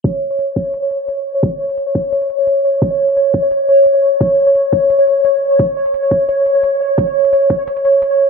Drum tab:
HH |x--xx---x-x-x---|x--xx---xxx-x---|x--xx---x-x-x---|x--xx---xxx-x---|
BD |o-----o---------|o-----o---------|o-----o---------|o-----o---------|

HH |x--xx---x-x-x---|x--xx---xxx-x---|
BD |o-----o---------|o-----o---------|